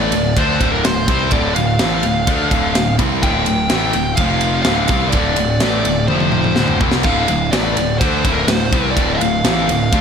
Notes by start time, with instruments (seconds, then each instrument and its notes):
Already playing: picked electric bass A1, distorted electric guitar A2 E3 A3, lead electric guitar D5
0.12 picked electric bass D1, distorted electric guitar D2 A2, ride
0.37 picked electric bass D2, distorted electric guitar D3 A3 D4, lead electric guitar C5, kick, ride
0.61 picked electric bass D1, distorted electric guitar D2 A2 D3, kick, ride
0.72 lead electric guitar A#4
0.85 picked electric bass D1, distorted electric guitar D2 A2, lead electric guitar C5, snare, ride
1.08 picked electric bass C2, distorted electric guitar C3 G3 C4, kick, ride
1.31 picked electric bass D1, distorted electric guitar D2 A2 D3, lead electric guitar D5, kick, ride
1.54 picked electric bass D1, distorted electric guitar D2 A2, lead electric guitar F5, ride
1.79 picked electric bass A1, distorted electric guitar A2 E3 A3, snare, ride
2.03 picked electric bass D1, distorted electric guitar D2 A2, ride
2.27 picked electric bass D2, distorted electric guitar D3 A3 D4, kick, ride
2.50 picked electric bass D1, distorted electric guitar D2 A2 D3, kick, ride
2.75 picked electric bass D1, distorted electric guitar D2 A2, snare, ride
2.98 picked electric bass C2, distorted electric guitar C3 G3 C4, kick, ride
3.22 picked electric bass D1, distorted electric guitar D2 A2 D3, lead electric guitar G5, kick, ride
3.46 picked electric bass D1, distorted electric guitar D2 A2, ride
3.70 picked electric bass A1, distorted electric guitar A2 E3 A3, snare, ride
3.93 picked electric bass D1, distorted electric guitar D2 A2, ride
4.15 picked electric bass F1, distorted electric guitar F2, lead electric guitar F5, kick, ride
4.20 distorted electric guitar C3 F3
4.41 ride
4.63 picked electric bass D1, lead electric guitar F5, snare, ride
4.67 distorted electric guitar D2 A2 D3
4.88 picked electric bass C2, distorted electric guitar C3 G3, kick, ride
4.92 distorted electric guitar C4
5.09 picked electric bass D1, distorted electric guitar D2, lead electric guitar D5, kick, ride
5.14 distorted electric guitar A2 D3
5.36 picked electric bass D1, distorted electric guitar D2 A2, ride
5.60 picked electric bass A1, distorted electric guitar A2 E3 A3, snare, ride
5.85 picked electric bass D1, distorted electric guitar D2 A2, ride
6.08 picked electric bass F1, distorted electric guitar F2 C3, lead electric guitar C5, high tom
6.12 distorted electric guitar F3
6.20 high tom
6.32 mid tom
6.44 mid tom
6.56 picked electric bass D1, distorted electric guitar D2 A2 D3, snare
6.68 mid tom
6.81 picked electric bass C2, distorted electric guitar C3 G3 C4, kick
6.92 snare
7.03 picked electric bass D1, distorted electric guitar D2 A2 D3, lead electric guitar F5, kick, crash
7.28 picked electric bass D1, distorted electric guitar D2 A2, ride
7.51 picked electric bass A1, distorted electric guitar A2 E3 A3, lead electric guitar D5, snare, ride
7.77 picked electric bass D1, distorted electric guitar D2 A2, ride
7.99 picked electric bass D2, distorted electric guitar D3 A3 D4, lead electric guitar C5, kick, ride
8.24 picked electric bass D1, distorted electric guitar D2 A2 D3, kick, ride
8.32 lead electric guitar A#4
8.44 picked electric bass D1, lead electric guitar C5, ride
8.48 distorted electric guitar D2 A2, snare
8.72 picked electric bass C2, distorted electric guitar C3 G3 C4, kick, ride
8.91 lead electric guitar D5
8.96 picked electric bass D1, distorted electric guitar D2 A2 D3, kick, ride
9.15 lead electric guitar D#5 F5
9.20 picked electric bass D1, distorted electric guitar D2 A2, ride
9.44 picked electric bass A1, distorted electric guitar A2 E3 A3, snare, ride
9.68 picked electric bass D1, distorted electric guitar D2 A2, ride
9.92 picked electric bass D2, distorted electric guitar D3 A3 D4, kick, ride